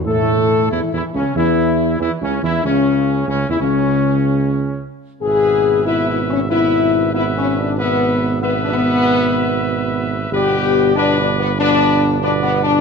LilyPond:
<<
  \new Staff \with { instrumentName = "Trumpet section" } { \time 4/4 \key a \major \tempo 4 = 94 a'4 \tuplet 3/2 { e'8 e'8 cis'8 } e'4 \tuplet 3/2 { e'8 cis'8 e'8 } | cis'4 \tuplet 3/2 { cis'8 e'16 cis'8.~ } cis'4. r8 | <b' e''>4 <b' e''>4 <b' e''>4 <b' e''>4 | <b' e''>4 <b' e''>2. |
<b' d''>4 <b' d''>4 <b' d''>4 <b' d''>4 | }
  \new Staff \with { instrumentName = "French horn section" } { \time 4/4 \key a \major a'4 \tuplet 3/2 { e'8 e'8 cis'8 } e'4 \tuplet 3/2 { e'8 cis'8 e'8 } | cis'4 \tuplet 3/2 { cis'8 e'16 cis'8.~ } cis'4. r8 | gis'4 \tuplet 3/2 { e'8 e'8 cis'8 } e'4 \tuplet 3/2 { e'8 cis'8 d'8 } | b4 \tuplet 3/2 { b8 d'16 b8.~ } b4. r8 |
g'4 \tuplet 3/2 { d'8 d'8 b8 } d'4 \tuplet 3/2 { d'8 b8 d'8 } | }
  \new Staff \with { instrumentName = "Trombone section" } { \clef bass \time 4/4 \key a \major a4 \tuplet 3/2 { e8 e8 cis8 } e4 \tuplet 3/2 { e8 cis8 e8 } | cis4 \tuplet 3/2 { cis8 e16 cis8.~ } cis4. r8 | <b, b>4 <b, b>4 <b, b>4 <b, b>4 | <b, b>4 <b, b>2. |
<b, b>4 <b, b>4 <b, b>4 <b, b>4 | }
  \new Staff \with { instrumentName = "Tuba" } { \clef bass \time 4/4 \key a \major a,4 \tuplet 3/2 { e,8 e,8 cis,8 } e,4 \tuplet 3/2 { e,8 cis,8 e,8 } | cis,4 \tuplet 3/2 { cis,8 e,16 cis,8.~ } cis,4. r8 | gis,,1~ | gis,,1 |
g,,1 | }
>>